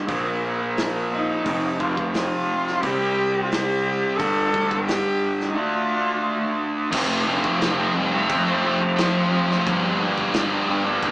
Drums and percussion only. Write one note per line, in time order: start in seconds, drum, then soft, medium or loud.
0.09 kick loud
0.09 open hi-hat soft
0.77 snare loud
0.77 open hi-hat medium
1.46 kick loud
1.46 open hi-hat medium
1.80 kick medium
1.97 kick medium
2.14 snare loud
2.14 open hi-hat medium
2.67 snare soft
2.83 kick loud
2.83 open hi-hat medium
3.52 snare loud
3.52 open hi-hat medium
4.19 kick loud
4.19 open hi-hat medium
4.54 kick medium
4.71 kick medium
4.88 snare loud
4.88 open hi-hat medium
5.40 snare soft
6.92 kick loud
6.92 crash loud
6.92 crash medium
7.44 kick medium
7.61 snare loud
7.61 crash medium
8.29 kick loud
8.29 crash medium
8.98 snare loud
8.98 crash medium
9.51 snare soft
9.67 kick loud
9.67 crash medium
10.18 kick medium
10.34 snare loud
10.34 crash medium
11.02 kick loud
11.02 crash medium